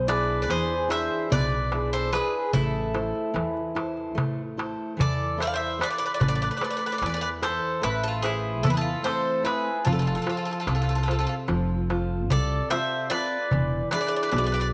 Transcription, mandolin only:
0.09 B4
0.43 B4
0.50 G#4
0.90 C5
1.33 B4
1.94 A4
2.15 G#4
2.54 E4
5.01 A4
5.42 C5 D5
5.54 C5
5.82 B4
5.93 B4
5.99 B4
6.06 B4
6.14 B4
6.20 B4
6.28 B4
6.35 B4
6.44 B4
6.51 B4
6.57 B4
6.64 B4
6.73 B4
6.79 B4
6.86 B4
6.94 B4
7.03 B4
7.10 B4
7.17 B4
7.23 B4
7.44 A4
7.84 E4
8.08 F4
8.25 E4
8.66 E4
8.74 G#4
8.81 F4
9.07 A4
9.47 G#4
9.87 F4
9.95 F4
10.02 F4
10.08 F4
10.17 F4
10.24 F4
10.30 F4
10.38 F4
10.47 F4
10.51 F4
10.61 F4
10.68 F4
10.76 F4
10.83 F4
10.91 F4
10.98 F4
11.06 F4
11.13 F4
11.20 F4
11.29 F4
12.30 A4
12.70 C5
13.11 B4
13.91 B4
13.98 B4
14.07 B4
14.16 B4
14.23 B4
14.29 B4
14.36 B4
14.44 B4
14.52 B4
14.60 B4

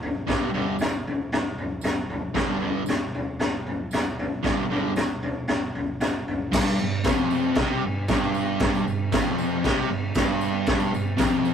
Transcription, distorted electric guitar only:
0.27 G2 D3 G3
0.54 G2 D3 G3
2.34 G2 D3 G3
2.58 G2 D3 G3
4.43 G2 D3 G3
4.70 G2 D3 G3
6.51 G2
6.81 G2
7.04 F2
7.58 C3
7.84 G2
8.09 G2
8.62 G2
8.87 G2
9.12 F2
9.64 C3
9.89 G2
10.18 G2
10.69 G2
10.94 G2
11.17 F2

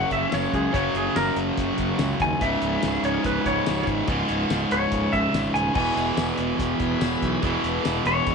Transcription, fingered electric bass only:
0.10 F#1
0.33 F#1
0.53 C#2
0.74 F#1
0.94 F#1
1.16 F#1
1.36 F#1
1.57 F#1
1.78 F#1
1.99 C#2
2.20 D#2
2.41 C#1
2.62 C#1
2.83 C#1
3.03 C#1
3.24 C#1
3.45 C#1
3.68 C#1
3.87 G#1
4.08 C#1
4.30 C#1
4.50 C#1
4.72 C#1
4.93 C#1
5.12 C#1
5.34 G#1
5.54 D#1
5.75 E1
5.97 E1
6.17 E1
6.38 E1
6.59 E1
6.80 E1
7.01 E1
7.22 B1
7.42 E1
7.64 E1
7.86 E1
8.06 E1
8.27 E1

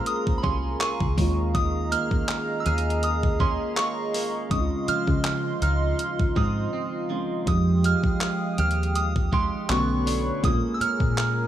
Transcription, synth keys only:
Already playing: G#3 A#3 C4 C#4 F4
1.17 D#3 G#3 A#3 C#4
1.21 F4
4.50 D#3 G#3 C4 C#4
4.54 D#4
4.60 F4
7.10 D#3 G#3 C4 C#4 F4
7.45 F3 G#3 C4 D#4
7.49 G4
9.69 D3 A3 B3 C#4 F#4
10.42 G#3 A#3 C4 C#4
10.46 F4

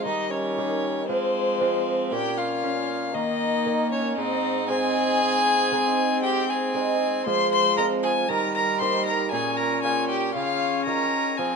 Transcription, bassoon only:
0.06 D#3
1.09 F3
2.13 A#2
3.14 D#3
4.18 G#2
7.26 F3
8.29 D#3
9.32 A#2
10.35 C#3
10.87 D#3
11.38 F3

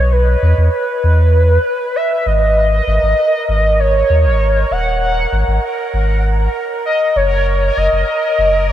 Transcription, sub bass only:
Already playing: B1
0.43 E2
0.58 E2
1.04 E2
2.26 G#1
2.87 G#1
3.03 G#1
3.49 G#1
4.10 D#2
4.25 G#1
4.71 D#1
5.32 G#1
5.48 G#1
5.94 G#1
7.16 F#1
7.77 F#1
7.93 F#1
8.39 F#1

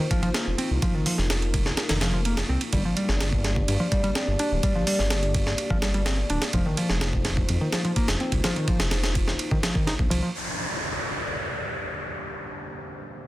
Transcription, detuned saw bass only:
0.47 F1
0.71 C2
1.18 F1
1.90 F1
2.49 C2
2.73 G1
3.09 G1
3.68 G2
4.28 G1
4.52 D1
4.99 G1
5.71 G1
6.30 D1
6.54 F1
6.90 F1
7.49 F2
8.09 F1
8.32 C2
8.80 F1
9.99 A#1
10.11 C2

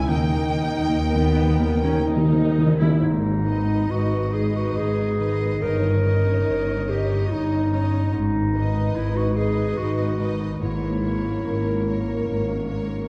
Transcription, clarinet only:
3.01 D#4
3.90 F#4
4.34 G#4
4.56 F#4
4.77 G#4
5.62 A#4
6.89 G4
7.32 D#4
8.13 D#4
8.95 E4
9.16 F#4
9.36 G#4
9.78 F#4
10.61 E4

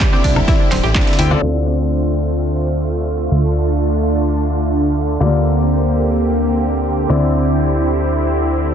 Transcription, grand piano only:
0.13 D3 C4 E4 G4 D5
0.48 D3 C4 E4 G4 D5
0.95 D3 C4 E4 G4 D5
1.19 D3 C4 E4 G4 G5
1.31 D3 C4 F4 A4 D5
1.42 D3 C4 F4 A4
5.20 D3 A#3 F4 G4 D5
7.09 D3 C4 E4 G4 D5

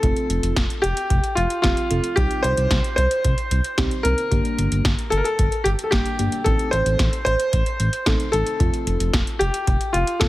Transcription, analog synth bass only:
0.03 F1
0.30 F1
0.43 F1
0.56 F1
0.83 F1
1.10 F1
1.37 F1
1.64 F1
1.90 F1
2.17 C2
2.44 C2
2.57 C2
2.71 C2
2.98 C2
3.25 C2
3.51 C2
3.78 C2
4.05 C2
4.31 G1
4.58 G1
4.72 G1
4.85 G1
5.12 G1
5.39 G1
5.65 G1
5.92 G1
6.19 G1
6.46 A1
6.73 A1
6.86 A1
6.99 A1
7.26 A1
7.53 A1
7.80 A1
8.07 A1
8.33 A1
8.60 F1
8.87 F1
9.00 F1
9.14 F1
9.41 F1
9.67 F1
9.94 F1
10.21 F1

